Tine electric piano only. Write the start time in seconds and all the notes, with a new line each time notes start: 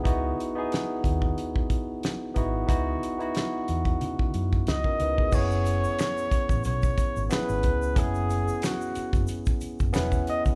Already playing: B3 D#4 E4 F#4 G#4
0.04 B3 D#4 E4 F#4
0.55 B3 D#4 E4 G#4
2.35 B3 D#4 E4 F#4
2.67 B3 D#4 E4 F#4
3.19 B3 D#4 E4 F#4
4.85 C#4 A#4
5.00 D#4 B4
5.19 B3 G#4
5.32 B3 C#4 E4 G#4
7.29 B3 C#4 E4 G#4
7.95 B3 C#4 E4 G#4
9.93 B3 C#4 E4 B4